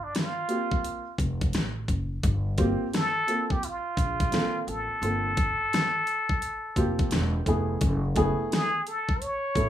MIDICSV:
0, 0, Header, 1, 5, 480
1, 0, Start_track
1, 0, Tempo, 697674
1, 1535, Time_signature, 4, 2, 24, 8
1, 6668, End_track
2, 0, Start_track
2, 0, Title_t, "Muted trumpet"
2, 0, Program_c, 0, 59
2, 25, Note_on_c, 0, 62, 74
2, 102, Note_off_c, 0, 62, 0
2, 111, Note_on_c, 0, 65, 96
2, 795, Note_off_c, 0, 65, 0
2, 2030, Note_on_c, 0, 69, 122
2, 2417, Note_on_c, 0, 67, 95
2, 2428, Note_off_c, 0, 69, 0
2, 2507, Note_on_c, 0, 65, 99
2, 2518, Note_off_c, 0, 67, 0
2, 3224, Note_on_c, 0, 69, 102
2, 3234, Note_off_c, 0, 65, 0
2, 5139, Note_off_c, 0, 69, 0
2, 5864, Note_on_c, 0, 68, 101
2, 6106, Note_on_c, 0, 69, 89
2, 6116, Note_off_c, 0, 68, 0
2, 6337, Note_on_c, 0, 73, 109
2, 6347, Note_off_c, 0, 69, 0
2, 6668, Note_off_c, 0, 73, 0
2, 6668, End_track
3, 0, Start_track
3, 0, Title_t, "Upright piano"
3, 0, Program_c, 1, 0
3, 332, Note_on_c, 1, 58, 58
3, 336, Note_on_c, 1, 60, 50
3, 339, Note_on_c, 1, 65, 54
3, 343, Note_on_c, 1, 67, 67
3, 698, Note_off_c, 1, 58, 0
3, 700, Note_off_c, 1, 60, 0
3, 702, Note_off_c, 1, 65, 0
3, 703, Note_off_c, 1, 67, 0
3, 1774, Note_on_c, 1, 58, 82
3, 1776, Note_on_c, 1, 60, 75
3, 1779, Note_on_c, 1, 65, 69
3, 1784, Note_on_c, 1, 67, 86
3, 1964, Note_off_c, 1, 58, 0
3, 1965, Note_off_c, 1, 60, 0
3, 1967, Note_off_c, 1, 65, 0
3, 1969, Note_off_c, 1, 67, 0
3, 2252, Note_on_c, 1, 58, 63
3, 2257, Note_on_c, 1, 60, 60
3, 2259, Note_on_c, 1, 65, 55
3, 2261, Note_on_c, 1, 69, 65
3, 2443, Note_off_c, 1, 58, 0
3, 2445, Note_off_c, 1, 60, 0
3, 2446, Note_off_c, 1, 65, 0
3, 2447, Note_off_c, 1, 69, 0
3, 2969, Note_on_c, 1, 58, 54
3, 2972, Note_on_c, 1, 60, 54
3, 2978, Note_on_c, 1, 65, 54
3, 2980, Note_on_c, 1, 69, 50
3, 3013, Note_off_c, 1, 69, 0
3, 3023, Note_on_c, 1, 69, 65
3, 3446, Note_off_c, 1, 58, 0
3, 3449, Note_off_c, 1, 60, 0
3, 3452, Note_off_c, 1, 65, 0
3, 3455, Note_off_c, 1, 69, 0
3, 3456, Note_on_c, 1, 58, 62
3, 3459, Note_on_c, 1, 60, 57
3, 3462, Note_on_c, 1, 65, 60
3, 3466, Note_on_c, 1, 69, 68
3, 3645, Note_off_c, 1, 58, 0
3, 3646, Note_off_c, 1, 60, 0
3, 3648, Note_off_c, 1, 65, 0
3, 3650, Note_off_c, 1, 69, 0
3, 4653, Note_on_c, 1, 58, 75
3, 4660, Note_on_c, 1, 60, 69
3, 4662, Note_on_c, 1, 65, 73
3, 4665, Note_on_c, 1, 67, 82
3, 5137, Note_on_c, 1, 57, 84
3, 5140, Note_on_c, 1, 59, 73
3, 5142, Note_on_c, 1, 64, 71
3, 5148, Note_on_c, 1, 68, 90
3, 5340, Note_off_c, 1, 58, 0
3, 5343, Note_off_c, 1, 60, 0
3, 5345, Note_off_c, 1, 65, 0
3, 5346, Note_off_c, 1, 67, 0
3, 5501, Note_off_c, 1, 57, 0
3, 5502, Note_off_c, 1, 59, 0
3, 5503, Note_off_c, 1, 64, 0
3, 5506, Note_off_c, 1, 68, 0
3, 5610, Note_on_c, 1, 57, 90
3, 5614, Note_on_c, 1, 59, 77
3, 5618, Note_on_c, 1, 64, 77
3, 5620, Note_on_c, 1, 68, 106
3, 5977, Note_off_c, 1, 57, 0
3, 5979, Note_off_c, 1, 59, 0
3, 5981, Note_off_c, 1, 64, 0
3, 5982, Note_off_c, 1, 68, 0
3, 6574, Note_on_c, 1, 57, 65
3, 6577, Note_on_c, 1, 59, 62
3, 6580, Note_on_c, 1, 64, 60
3, 6581, Note_on_c, 1, 69, 76
3, 6668, Note_off_c, 1, 57, 0
3, 6668, Note_off_c, 1, 59, 0
3, 6668, Note_off_c, 1, 64, 0
3, 6668, Note_off_c, 1, 69, 0
3, 6668, End_track
4, 0, Start_track
4, 0, Title_t, "Upright bass"
4, 0, Program_c, 2, 32
4, 815, Note_on_c, 2, 29, 97
4, 1025, Note_off_c, 2, 29, 0
4, 1061, Note_on_c, 2, 33, 89
4, 1269, Note_off_c, 2, 33, 0
4, 1296, Note_on_c, 2, 30, 76
4, 1506, Note_off_c, 2, 30, 0
4, 1538, Note_on_c, 2, 31, 106
4, 1884, Note_off_c, 2, 31, 0
4, 2732, Note_on_c, 2, 34, 100
4, 2944, Note_off_c, 2, 34, 0
4, 3215, Note_on_c, 2, 33, 81
4, 3352, Note_off_c, 2, 33, 0
4, 3452, Note_on_c, 2, 31, 94
4, 3800, Note_off_c, 2, 31, 0
4, 4654, Note_on_c, 2, 29, 89
4, 4865, Note_off_c, 2, 29, 0
4, 4898, Note_on_c, 2, 28, 85
4, 5107, Note_off_c, 2, 28, 0
4, 5137, Note_on_c, 2, 29, 80
4, 5346, Note_off_c, 2, 29, 0
4, 5376, Note_on_c, 2, 30, 97
4, 5723, Note_off_c, 2, 30, 0
4, 6574, Note_on_c, 2, 33, 97
4, 6668, Note_off_c, 2, 33, 0
4, 6668, End_track
5, 0, Start_track
5, 0, Title_t, "Drums"
5, 102, Note_on_c, 9, 42, 79
5, 108, Note_on_c, 9, 38, 104
5, 170, Note_off_c, 9, 42, 0
5, 177, Note_off_c, 9, 38, 0
5, 336, Note_on_c, 9, 42, 72
5, 405, Note_off_c, 9, 42, 0
5, 492, Note_on_c, 9, 36, 81
5, 561, Note_off_c, 9, 36, 0
5, 581, Note_on_c, 9, 42, 92
5, 650, Note_off_c, 9, 42, 0
5, 815, Note_on_c, 9, 36, 83
5, 822, Note_on_c, 9, 42, 69
5, 884, Note_off_c, 9, 36, 0
5, 891, Note_off_c, 9, 42, 0
5, 973, Note_on_c, 9, 36, 94
5, 973, Note_on_c, 9, 42, 55
5, 1042, Note_off_c, 9, 36, 0
5, 1042, Note_off_c, 9, 42, 0
5, 1054, Note_on_c, 9, 42, 77
5, 1064, Note_on_c, 9, 38, 95
5, 1123, Note_off_c, 9, 42, 0
5, 1133, Note_off_c, 9, 38, 0
5, 1296, Note_on_c, 9, 36, 78
5, 1300, Note_on_c, 9, 42, 62
5, 1364, Note_off_c, 9, 36, 0
5, 1369, Note_off_c, 9, 42, 0
5, 1537, Note_on_c, 9, 36, 110
5, 1538, Note_on_c, 9, 42, 90
5, 1606, Note_off_c, 9, 36, 0
5, 1606, Note_off_c, 9, 42, 0
5, 1773, Note_on_c, 9, 42, 66
5, 1776, Note_on_c, 9, 36, 89
5, 1841, Note_off_c, 9, 42, 0
5, 1845, Note_off_c, 9, 36, 0
5, 2019, Note_on_c, 9, 42, 76
5, 2026, Note_on_c, 9, 38, 108
5, 2088, Note_off_c, 9, 42, 0
5, 2095, Note_off_c, 9, 38, 0
5, 2257, Note_on_c, 9, 42, 72
5, 2326, Note_off_c, 9, 42, 0
5, 2410, Note_on_c, 9, 36, 81
5, 2479, Note_off_c, 9, 36, 0
5, 2498, Note_on_c, 9, 42, 98
5, 2567, Note_off_c, 9, 42, 0
5, 2733, Note_on_c, 9, 36, 87
5, 2741, Note_on_c, 9, 42, 73
5, 2802, Note_off_c, 9, 36, 0
5, 2809, Note_off_c, 9, 42, 0
5, 2890, Note_on_c, 9, 36, 92
5, 2890, Note_on_c, 9, 42, 54
5, 2959, Note_off_c, 9, 36, 0
5, 2959, Note_off_c, 9, 42, 0
5, 2974, Note_on_c, 9, 42, 81
5, 2984, Note_on_c, 9, 38, 99
5, 3043, Note_off_c, 9, 42, 0
5, 3053, Note_off_c, 9, 38, 0
5, 3219, Note_on_c, 9, 42, 62
5, 3288, Note_off_c, 9, 42, 0
5, 3459, Note_on_c, 9, 42, 90
5, 3528, Note_off_c, 9, 42, 0
5, 3695, Note_on_c, 9, 42, 63
5, 3697, Note_on_c, 9, 36, 101
5, 3764, Note_off_c, 9, 42, 0
5, 3765, Note_off_c, 9, 36, 0
5, 3943, Note_on_c, 9, 42, 75
5, 3950, Note_on_c, 9, 38, 109
5, 4012, Note_off_c, 9, 42, 0
5, 4019, Note_off_c, 9, 38, 0
5, 4176, Note_on_c, 9, 42, 79
5, 4245, Note_off_c, 9, 42, 0
5, 4330, Note_on_c, 9, 36, 79
5, 4399, Note_off_c, 9, 36, 0
5, 4417, Note_on_c, 9, 42, 95
5, 4486, Note_off_c, 9, 42, 0
5, 4653, Note_on_c, 9, 36, 85
5, 4657, Note_on_c, 9, 42, 74
5, 4721, Note_off_c, 9, 36, 0
5, 4726, Note_off_c, 9, 42, 0
5, 4809, Note_on_c, 9, 42, 56
5, 4810, Note_on_c, 9, 36, 91
5, 4878, Note_off_c, 9, 42, 0
5, 4879, Note_off_c, 9, 36, 0
5, 4891, Note_on_c, 9, 42, 82
5, 4901, Note_on_c, 9, 38, 100
5, 4959, Note_off_c, 9, 42, 0
5, 4970, Note_off_c, 9, 38, 0
5, 5134, Note_on_c, 9, 36, 76
5, 5139, Note_on_c, 9, 42, 60
5, 5203, Note_off_c, 9, 36, 0
5, 5208, Note_off_c, 9, 42, 0
5, 5372, Note_on_c, 9, 42, 96
5, 5376, Note_on_c, 9, 36, 105
5, 5441, Note_off_c, 9, 42, 0
5, 5445, Note_off_c, 9, 36, 0
5, 5612, Note_on_c, 9, 42, 66
5, 5616, Note_on_c, 9, 36, 88
5, 5680, Note_off_c, 9, 42, 0
5, 5685, Note_off_c, 9, 36, 0
5, 5863, Note_on_c, 9, 42, 87
5, 5870, Note_on_c, 9, 38, 110
5, 5932, Note_off_c, 9, 42, 0
5, 5939, Note_off_c, 9, 38, 0
5, 6100, Note_on_c, 9, 42, 80
5, 6169, Note_off_c, 9, 42, 0
5, 6252, Note_on_c, 9, 36, 84
5, 6320, Note_off_c, 9, 36, 0
5, 6341, Note_on_c, 9, 42, 91
5, 6410, Note_off_c, 9, 42, 0
5, 6574, Note_on_c, 9, 36, 92
5, 6582, Note_on_c, 9, 42, 71
5, 6643, Note_off_c, 9, 36, 0
5, 6651, Note_off_c, 9, 42, 0
5, 6668, End_track
0, 0, End_of_file